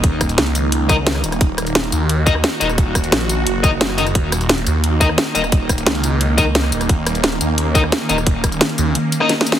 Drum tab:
HH |x-----x--x--x--x--x-----x-----x-----x-----o--x--|x-----x--x--x--x--x-----x-----x-----x-----o-----|x-----x--x--x--x--x-----x-----x-----x-----o--x--|x-----x--x--x--x--x-----x-----x-----x-----o-----|
TB |------x--x--------x-----------x-----------x--x--|------x--x--------x-----------x-----------x--x--|------x--x--------x-----------x-----------x--x--|------x--x--------x-----------x-----------x--x--|
SD |------r-----o-----------------------o--r-----r--|------r-----o--------------------r--o--------r--|------r-----o-----------------------o--r-----r--|------r-----o--------------------r--o--------r--|
BD |o-----o-----------------------o-----------------|o-----------------------------o-----------------|o-----o-----------------------o-----------------|o-----------------------------o-----------------|

HH |x-----x--x--x--x--x-----x-----x-----x-----o--x--|x-----x--x--x--x--x-----x-----x-----x-----o-----|x-----x--x--x--x--x-----x-----x-----x-----o--x--|
TB |------x--x--------x-----------x-----------x--x--|------x--x--------x-----------x-----------x--x--|------x--x--------x-----------x-----------x--x--|
SD |------r-----o-----------------------o--r-----r--|------r-----o--------------------r--o--------r--|------r-----o--------------------r--o---o---o---|
BD |o-----o-----------------------o-----------------|o-----------------------------o-----------------|o-----o-----------------------------------------|